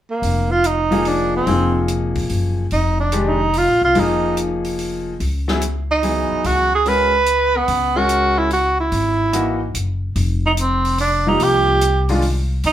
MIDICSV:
0, 0, Header, 1, 6, 480
1, 0, Start_track
1, 0, Tempo, 413793
1, 262, Time_signature, 3, 2, 24, 8
1, 14761, End_track
2, 0, Start_track
2, 0, Title_t, "Tenor saxophone"
2, 0, Program_c, 0, 66
2, 121, Note_on_c, 0, 58, 75
2, 594, Note_on_c, 0, 65, 87
2, 612, Note_off_c, 0, 58, 0
2, 767, Note_on_c, 0, 63, 77
2, 784, Note_off_c, 0, 65, 0
2, 1258, Note_on_c, 0, 62, 77
2, 1275, Note_off_c, 0, 63, 0
2, 1561, Note_off_c, 0, 62, 0
2, 1575, Note_on_c, 0, 60, 70
2, 2156, Note_off_c, 0, 60, 0
2, 3163, Note_on_c, 0, 63, 75
2, 3453, Note_off_c, 0, 63, 0
2, 3480, Note_on_c, 0, 62, 73
2, 3767, Note_off_c, 0, 62, 0
2, 3767, Note_on_c, 0, 62, 56
2, 3810, Note_on_c, 0, 63, 77
2, 3828, Note_off_c, 0, 62, 0
2, 4149, Note_on_c, 0, 65, 86
2, 4166, Note_off_c, 0, 63, 0
2, 4449, Note_off_c, 0, 65, 0
2, 4460, Note_on_c, 0, 65, 78
2, 4632, Note_on_c, 0, 63, 83
2, 4649, Note_off_c, 0, 65, 0
2, 5091, Note_off_c, 0, 63, 0
2, 6857, Note_on_c, 0, 63, 78
2, 7498, Note_on_c, 0, 66, 90
2, 7516, Note_off_c, 0, 63, 0
2, 7806, Note_off_c, 0, 66, 0
2, 7828, Note_on_c, 0, 68, 87
2, 7986, Note_on_c, 0, 71, 92
2, 8003, Note_off_c, 0, 68, 0
2, 8784, Note_on_c, 0, 59, 78
2, 8801, Note_off_c, 0, 71, 0
2, 9253, Note_on_c, 0, 66, 89
2, 9271, Note_off_c, 0, 59, 0
2, 9730, Note_on_c, 0, 64, 81
2, 9747, Note_off_c, 0, 66, 0
2, 9882, Note_off_c, 0, 64, 0
2, 9896, Note_on_c, 0, 66, 82
2, 10184, Note_off_c, 0, 66, 0
2, 10206, Note_on_c, 0, 64, 76
2, 11273, Note_off_c, 0, 64, 0
2, 12136, Note_on_c, 0, 63, 70
2, 12203, Note_off_c, 0, 63, 0
2, 12294, Note_on_c, 0, 60, 71
2, 12730, Note_off_c, 0, 60, 0
2, 12767, Note_on_c, 0, 62, 80
2, 13091, Note_on_c, 0, 63, 81
2, 13108, Note_off_c, 0, 62, 0
2, 13260, Note_on_c, 0, 67, 96
2, 13277, Note_off_c, 0, 63, 0
2, 14044, Note_off_c, 0, 67, 0
2, 14692, Note_on_c, 0, 63, 92
2, 14761, Note_off_c, 0, 63, 0
2, 14761, End_track
3, 0, Start_track
3, 0, Title_t, "Grand piano"
3, 0, Program_c, 1, 0
3, 1054, Note_on_c, 1, 53, 60
3, 1065, Note_on_c, 1, 58, 51
3, 1069, Note_on_c, 1, 63, 58
3, 1073, Note_on_c, 1, 68, 66
3, 1667, Note_off_c, 1, 53, 0
3, 1672, Note_off_c, 1, 58, 0
3, 1674, Note_off_c, 1, 63, 0
3, 1676, Note_off_c, 1, 68, 0
3, 1705, Note_on_c, 1, 53, 49
3, 1708, Note_on_c, 1, 58, 46
3, 1712, Note_on_c, 1, 63, 46
3, 1717, Note_on_c, 1, 68, 54
3, 3050, Note_off_c, 1, 53, 0
3, 3052, Note_off_c, 1, 58, 0
3, 3054, Note_off_c, 1, 63, 0
3, 3057, Note_off_c, 1, 68, 0
3, 3625, Note_on_c, 1, 51, 54
3, 3629, Note_on_c, 1, 56, 54
3, 3635, Note_on_c, 1, 62, 52
3, 3638, Note_on_c, 1, 67, 61
3, 3915, Note_off_c, 1, 51, 0
3, 3917, Note_off_c, 1, 56, 0
3, 3920, Note_off_c, 1, 62, 0
3, 3921, Note_off_c, 1, 67, 0
3, 4583, Note_on_c, 1, 53, 61
3, 4591, Note_on_c, 1, 58, 55
3, 4599, Note_on_c, 1, 63, 52
3, 4604, Note_on_c, 1, 68, 58
3, 5932, Note_off_c, 1, 53, 0
3, 5936, Note_off_c, 1, 58, 0
3, 5940, Note_off_c, 1, 63, 0
3, 5942, Note_off_c, 1, 68, 0
3, 6356, Note_on_c, 1, 54, 61
3, 6357, Note_on_c, 1, 59, 53
3, 6368, Note_on_c, 1, 64, 53
3, 6374, Note_on_c, 1, 68, 64
3, 6497, Note_off_c, 1, 54, 0
3, 6498, Note_off_c, 1, 59, 0
3, 6503, Note_off_c, 1, 64, 0
3, 6506, Note_off_c, 1, 68, 0
3, 6991, Note_on_c, 1, 54, 46
3, 6999, Note_on_c, 1, 59, 40
3, 7000, Note_on_c, 1, 52, 43
3, 7006, Note_on_c, 1, 68, 52
3, 7729, Note_off_c, 1, 54, 0
3, 7733, Note_off_c, 1, 52, 0
3, 7733, Note_off_c, 1, 59, 0
3, 7736, Note_off_c, 1, 68, 0
3, 7952, Note_on_c, 1, 56, 52
3, 7958, Note_on_c, 1, 61, 45
3, 7963, Note_on_c, 1, 66, 43
3, 7971, Note_on_c, 1, 70, 55
3, 8241, Note_off_c, 1, 56, 0
3, 8244, Note_off_c, 1, 61, 0
3, 8247, Note_off_c, 1, 66, 0
3, 8251, Note_off_c, 1, 70, 0
3, 9230, Note_on_c, 1, 56, 54
3, 9236, Note_on_c, 1, 61, 56
3, 9244, Note_on_c, 1, 66, 51
3, 9249, Note_on_c, 1, 70, 60
3, 9840, Note_off_c, 1, 56, 0
3, 9843, Note_off_c, 1, 61, 0
3, 9847, Note_off_c, 1, 66, 0
3, 9850, Note_off_c, 1, 70, 0
3, 10821, Note_on_c, 1, 52, 51
3, 10822, Note_on_c, 1, 58, 47
3, 10825, Note_on_c, 1, 63, 52
3, 10836, Note_on_c, 1, 66, 63
3, 11116, Note_off_c, 1, 52, 0
3, 11117, Note_off_c, 1, 58, 0
3, 11118, Note_off_c, 1, 63, 0
3, 11124, Note_off_c, 1, 66, 0
3, 13068, Note_on_c, 1, 53, 48
3, 13076, Note_on_c, 1, 58, 46
3, 13081, Note_on_c, 1, 63, 49
3, 13085, Note_on_c, 1, 67, 57
3, 13676, Note_off_c, 1, 53, 0
3, 13679, Note_off_c, 1, 58, 0
3, 13682, Note_off_c, 1, 63, 0
3, 13684, Note_off_c, 1, 67, 0
3, 14027, Note_on_c, 1, 51, 62
3, 14029, Note_on_c, 1, 56, 57
3, 14035, Note_on_c, 1, 62, 57
3, 14039, Note_on_c, 1, 65, 68
3, 14171, Note_off_c, 1, 51, 0
3, 14172, Note_off_c, 1, 56, 0
3, 14175, Note_off_c, 1, 62, 0
3, 14177, Note_off_c, 1, 65, 0
3, 14761, End_track
4, 0, Start_track
4, 0, Title_t, "Upright bass"
4, 0, Program_c, 2, 32
4, 256, Note_on_c, 2, 29, 68
4, 1654, Note_off_c, 2, 29, 0
4, 1703, Note_on_c, 2, 29, 76
4, 2618, Note_off_c, 2, 29, 0
4, 2668, Note_on_c, 2, 30, 64
4, 3114, Note_off_c, 2, 30, 0
4, 3155, Note_on_c, 2, 29, 76
4, 4225, Note_off_c, 2, 29, 0
4, 4271, Note_on_c, 2, 34, 53
4, 4418, Note_off_c, 2, 34, 0
4, 4425, Note_on_c, 2, 36, 63
4, 4575, Note_off_c, 2, 36, 0
4, 4593, Note_on_c, 2, 29, 71
4, 5986, Note_off_c, 2, 29, 0
4, 6033, Note_on_c, 2, 37, 73
4, 7268, Note_off_c, 2, 37, 0
4, 7477, Note_on_c, 2, 37, 76
4, 8870, Note_off_c, 2, 37, 0
4, 8911, Note_on_c, 2, 37, 81
4, 10306, Note_off_c, 2, 37, 0
4, 10346, Note_on_c, 2, 32, 74
4, 11263, Note_off_c, 2, 32, 0
4, 11301, Note_on_c, 2, 30, 65
4, 11753, Note_off_c, 2, 30, 0
4, 11782, Note_on_c, 2, 29, 81
4, 13178, Note_off_c, 2, 29, 0
4, 13233, Note_on_c, 2, 36, 80
4, 14621, Note_off_c, 2, 36, 0
4, 14664, Note_on_c, 2, 41, 85
4, 14761, Note_off_c, 2, 41, 0
4, 14761, End_track
5, 0, Start_track
5, 0, Title_t, "Muted upright bass strokes"
5, 7320, Note_on_c, 9, 29, 35
5, 7436, Note_off_c, 9, 29, 0
5, 14761, End_track
6, 0, Start_track
6, 0, Title_t, "Drums"
6, 265, Note_on_c, 9, 46, 36
6, 381, Note_off_c, 9, 46, 0
6, 740, Note_on_c, 9, 42, 41
6, 856, Note_off_c, 9, 42, 0
6, 1061, Note_on_c, 9, 46, 28
6, 1177, Note_off_c, 9, 46, 0
6, 1218, Note_on_c, 9, 46, 35
6, 1334, Note_off_c, 9, 46, 0
6, 1702, Note_on_c, 9, 46, 33
6, 1818, Note_off_c, 9, 46, 0
6, 2182, Note_on_c, 9, 42, 39
6, 2298, Note_off_c, 9, 42, 0
6, 2498, Note_on_c, 9, 46, 32
6, 2504, Note_on_c, 9, 36, 45
6, 2614, Note_off_c, 9, 46, 0
6, 2620, Note_off_c, 9, 36, 0
6, 2661, Note_on_c, 9, 46, 37
6, 2777, Note_off_c, 9, 46, 0
6, 3138, Note_on_c, 9, 46, 34
6, 3254, Note_off_c, 9, 46, 0
6, 3617, Note_on_c, 9, 42, 42
6, 3733, Note_off_c, 9, 42, 0
6, 4100, Note_on_c, 9, 46, 36
6, 4216, Note_off_c, 9, 46, 0
6, 4582, Note_on_c, 9, 46, 37
6, 4698, Note_off_c, 9, 46, 0
6, 5068, Note_on_c, 9, 42, 40
6, 5184, Note_off_c, 9, 42, 0
6, 5387, Note_on_c, 9, 46, 32
6, 5503, Note_off_c, 9, 46, 0
6, 5551, Note_on_c, 9, 46, 35
6, 5667, Note_off_c, 9, 46, 0
6, 6034, Note_on_c, 9, 46, 36
6, 6150, Note_off_c, 9, 46, 0
6, 6357, Note_on_c, 9, 38, 44
6, 6473, Note_off_c, 9, 38, 0
6, 6512, Note_on_c, 9, 42, 43
6, 6628, Note_off_c, 9, 42, 0
6, 6992, Note_on_c, 9, 46, 35
6, 7108, Note_off_c, 9, 46, 0
6, 7473, Note_on_c, 9, 46, 38
6, 7589, Note_off_c, 9, 46, 0
6, 7953, Note_on_c, 9, 46, 35
6, 8069, Note_off_c, 9, 46, 0
6, 8424, Note_on_c, 9, 42, 44
6, 8540, Note_off_c, 9, 42, 0
6, 8906, Note_on_c, 9, 46, 37
6, 9022, Note_off_c, 9, 46, 0
6, 9382, Note_on_c, 9, 42, 43
6, 9498, Note_off_c, 9, 42, 0
6, 9866, Note_on_c, 9, 46, 35
6, 9982, Note_off_c, 9, 46, 0
6, 10344, Note_on_c, 9, 46, 36
6, 10460, Note_off_c, 9, 46, 0
6, 10824, Note_on_c, 9, 42, 46
6, 10940, Note_off_c, 9, 42, 0
6, 11305, Note_on_c, 9, 42, 46
6, 11421, Note_off_c, 9, 42, 0
6, 11780, Note_on_c, 9, 46, 39
6, 11896, Note_off_c, 9, 46, 0
6, 12261, Note_on_c, 9, 42, 50
6, 12377, Note_off_c, 9, 42, 0
6, 12582, Note_on_c, 9, 46, 35
6, 12698, Note_off_c, 9, 46, 0
6, 12738, Note_on_c, 9, 46, 40
6, 12854, Note_off_c, 9, 46, 0
6, 13220, Note_on_c, 9, 46, 41
6, 13336, Note_off_c, 9, 46, 0
6, 13701, Note_on_c, 9, 42, 51
6, 13817, Note_off_c, 9, 42, 0
6, 14020, Note_on_c, 9, 46, 34
6, 14136, Note_off_c, 9, 46, 0
6, 14176, Note_on_c, 9, 46, 38
6, 14292, Note_off_c, 9, 46, 0
6, 14656, Note_on_c, 9, 46, 40
6, 14761, Note_off_c, 9, 46, 0
6, 14761, End_track
0, 0, End_of_file